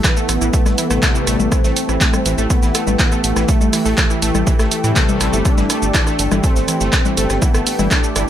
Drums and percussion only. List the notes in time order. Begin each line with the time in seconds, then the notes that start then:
0.04 kick, cross-stick, snare, clap, closed hi-hat, shaker
0.17 shaker
0.29 cross-stick, closed hi-hat, shaker
0.41 shaker
0.53 kick, closed hi-hat, shaker
0.66 cross-stick, snare, low conga, shaker
0.78 closed hi-hat, shaker
0.91 cross-stick, closed hi-hat, shaker
1.03 kick, snare, clap, closed hi-hat, shaker
1.15 shaker
1.27 cross-stick, snare, closed hi-hat, shaker
1.40 low conga, shaker
1.52 kick, cross-stick, closed hi-hat, shaker
1.64 snare, shaker
1.77 closed hi-hat, shaker
1.89 cross-stick, shaker
2.01 kick, snare, clap, closed hi-hat, shaker
2.13 cross-stick, low conga, shaker
2.26 closed hi-hat, shaker
2.38 shaker
2.50 kick, cross-stick, closed hi-hat, shaker
2.63 snare, shaker
2.75 cross-stick, closed hi-hat, shaker
2.87 low conga, shaker
2.99 kick, snare, clap, closed hi-hat, shaker
3.12 cross-stick, shaker
3.24 closed hi-hat, shaker
3.36 cross-stick, snare, shaker
3.49 kick, closed hi-hat, shaker
3.61 low conga, shaker
3.73 cross-stick, closed hi-hat, open hi-hat, shaker
3.86 snare, shaker
3.98 kick, cross-stick, snare, clap, closed hi-hat, shaker
4.10 shaker
4.22 closed hi-hat, shaker
4.35 cross-stick, low conga, shaker
4.47 kick, closed hi-hat, shaker
4.59 cross-stick, snare, shaker
4.72 closed hi-hat, shaker
4.84 closed hi-hat, shaker
4.96 kick, cross-stick, snare, clap, closed hi-hat, shaker
5.09 low conga, shaker
5.21 cross-stick, snare, closed hi-hat, shaker
5.33 shaker
5.45 kick, cross-stick, closed hi-hat, shaker
5.58 snare, low conga, shaker
5.70 cross-stick, closed hi-hat, shaker
5.82 shaker
5.94 kick, snare, clap, closed hi-hat, shaker
6.07 cross-stick, shaker
6.19 closed hi-hat, shaker
6.32 cross-stick, low conga, shaker
6.44 kick, closed hi-hat, shaker
6.56 snare, shaker
6.68 cross-stick, closed hi-hat, shaker
6.81 shaker
6.93 kick, cross-stick, snare, clap, closed hi-hat, shaker
7.05 low conga, shaker
7.17 closed hi-hat, shaker
7.30 cross-stick, snare, shaker
7.42 kick, closed hi-hat, shaker
7.54 cross-stick, shaker
7.67 closed hi-hat, open hi-hat, shaker
7.79 low conga, shaker
7.91 kick, cross-stick, snare, clap, closed hi-hat, shaker
8.04 shaker
8.16 cross-stick, closed hi-hat, shaker